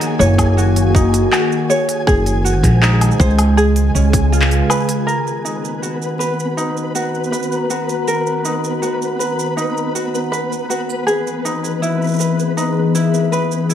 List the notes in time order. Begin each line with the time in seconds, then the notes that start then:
Already playing: D#3 A#3 D#4 F#4 G#4 A#4 C#5 G#5
0.01 open hi-hat, shaker
0.19 F#1 C#5, shaker
0.38 kick, open hi-hat, low woodblock, shaker
0.57 F#4, shaker
0.76 open hi-hat, shaker
0.95 D#4, kick, shaker
1.14 open hi-hat, shaker
1.32 F#4, clap, low woodblock, shaker
1.52 shaker
1.70 C#5, shaker
1.89 open hi-hat, shaker
2.07 F#1 G#4, kick, shaker
2.20 G#3
2.24 C5, open hi-hat, shaker
2.44 F#4, shaker
2.63 A#1, kick, clap, open hi-hat, shaker
2.82 D#4, clap, shaker
3.01 open hi-hat, low woodblock, shaker
3.11 shaker
3.19 C#2 C5, kick, shaker
3.30 shaker
3.39 open hi-hat, low woodblock, shaker
3.56 C#3 G#4, shaker
3.76 open hi-hat, shaker
3.95 C#2 C#4, shaker
4.13 kick, open hi-hat, shaker
4.19 B4
4.24 F4
4.32 F4, shaker
4.42 clap
4.51 open hi-hat, shaker
4.70 B4, low woodblock, shaker
4.89 open hi-hat, shaker
5.06 D#3 B3 A#4 B4, shaker
5.27 F#4, shaker
5.38 B3
5.45 D#4, shaker
5.65 A#5, shaker
5.82 F#4, shaker
6.02 shaker
6.19 B4, shaker
6.40 shaker
6.57 D#4, shaker
6.77 shaker
6.95 F#4, shaker
7.15 shaker
7.24 shaker
7.32 B4, shaker
7.43 shaker
7.52 shaker
7.70 F#4, shaker
7.89 shaker
8.07 A#4, shaker
8.27 shaker
8.45 D#4, shaker
8.64 shaker
8.82 F#4, shaker
9.02 shaker
9.19 B4, shaker
9.39 shaker
9.57 D#4, shaker
9.77 shaker
9.95 F#4, shaker
10.15 shaker
10.32 B4, shaker
10.52 shaker
10.70 F#4, shaker
10.90 shaker
11.06 E3 G#4, shaker
11.27 G#4, shaker
11.45 D#4, shaker
11.59 D#5
11.65 shaker
11.82 E4, shaker
12.02 shaker
12.04 shaker
12.07 shaker
12.09 shaker
12.11 shaker
12.14 shaker
12.16 shaker
12.19 B4, shaker
12.21 shaker
12.39 shaker
12.57 D#4, shaker
12.95 E4, shaker
13.14 shaker
13.32 B4, shaker
13.52 shaker
13.69 E4, shaker